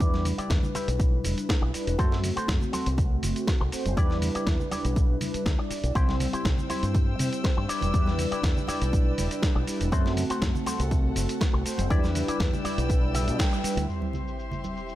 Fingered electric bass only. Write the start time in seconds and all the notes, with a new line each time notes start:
0.00 E2
0.38 muted fingered electric bass stroke
0.50 E2
0.75 muted fingered electric bass stroke
0.88 B1
1.24 E1
1.62 B1
1.87 E1
1.99 F#2
2.37 muted fingered electric bass stroke
2.48 F#2
2.87 C2
3.23 F#1
3.61 C2
3.73 muted fingered electric bass stroke
3.86 F#1
3.97 E2
4.35 muted fingered electric bass stroke
4.47 E2
4.72 muted fingered electric bass stroke
4.85 B1
5.34 muted fingered electric bass stroke
5.46 D2
5.70 muted fingered electric bass stroke
5.84 B1
5.95 C2
6.33 muted fingered electric bass stroke
6.45 C2
6.83 G2
7.19 C3
7.57 G2
7.69 muted fingered electric bass stroke
7.82 E1
7.94 E2
8.32 muted fingered electric bass stroke
8.43 E2
8.68 muted fingered electric bass stroke
8.81 B1
9.18 E1
9.56 B1
9.81 E1
9.92 F#2
10.30 muted fingered electric bass stroke
10.42 F#2
10.80 C2
11.16 F#1
11.54 C2
11.66 muted fingered electric bass stroke
11.79 F#1
11.90 E2
12.28 muted fingered electric bass stroke
12.40 E2
12.65 muted fingered electric bass stroke
12.78 B1
13.27 B2
13.64 muted fingered electric bass stroke
13.77 D2